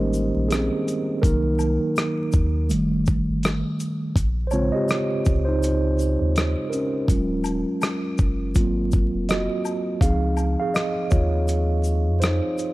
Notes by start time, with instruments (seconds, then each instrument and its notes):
Already playing: sub bass G#1, tine electric piano D#3 G3 G#3 A#3 C#4 D#4 G4 A#4 C5 D#5
0.13 shaker
0.36 sub bass A#1
0.49 tine electric piano C4 G#4, cross-stick, closed hi-hat, shaker
0.88 closed hi-hat, shaker
1.22 sub bass C2, tine electric piano D#3 F#3 A#3 D#4 A#4, kick, closed hi-hat, shaker
1.59 high woodblock, shaker
1.60 shaker
1.96 cross-stick, closed hi-hat, shaker
2.32 sub bass D#2, kick, shaker
2.69 sub bass F1, tine electric piano D#3 G3 A3, closed hi-hat, shaker
3.06 kick, shaker
3.29 sub bass G1
3.43 cross-stick, closed hi-hat, shaker
3.80 closed hi-hat, shaker
4.16 sub bass A#1, kick, closed hi-hat, shaker
4.47 tine electric piano C5 C#5, high woodblock, shaker
4.52 tine electric piano C#3 G#3 C4 F4, shaker
4.72 tine electric piano G4 D#5
4.88 cross-stick, closed hi-hat, shaker
5.25 sub bass C#2, kick, shaker
5.45 tine electric piano D#4 C5
5.63 closed hi-hat, shaker
5.99 shaker
6.00 shaker
6.21 sub bass D#2
6.36 cross-stick, closed hi-hat, shaker
6.70 tine electric piano C#4 A#4, closed hi-hat, shaker
7.08 sub bass D#1, tine electric piano F#3 G#3 C#4 F4, kick, closed hi-hat, shaker
7.44 closed hi-hat, high woodblock, shaker
7.46 shaker
7.82 cross-stick, closed hi-hat, high woodblock, shaker
8.18 sub bass F#1, kick, shaker
8.55 sub bass G#1, tine electric piano F#3 A#3 C4 F4, kick, closed hi-hat, shaker
8.92 kick, shaker
9.14 sub bass F1
9.29 tine electric piano F#4 D#5, cross-stick, closed hi-hat, shaker
9.65 high woodblock, shaker
10.01 sub bass C#2, tine electric piano F3 C4 D#4 G#4 F5, kick, closed hi-hat, shaker
10.37 high woodblock, shaker
10.38 shaker
10.60 tine electric piano G#4 F5
10.74 tine electric piano G#4 D#5, cross-stick, closed hi-hat, shaker
11.11 sub bass D#2, tine electric piano F4 C#5, kick, shaker
11.48 closed hi-hat, shaker
11.84 shaker
12.07 sub bass F2
12.20 tine electric piano D#4 C5, cross-stick, closed hi-hat, shaker
12.58 closed hi-hat, shaker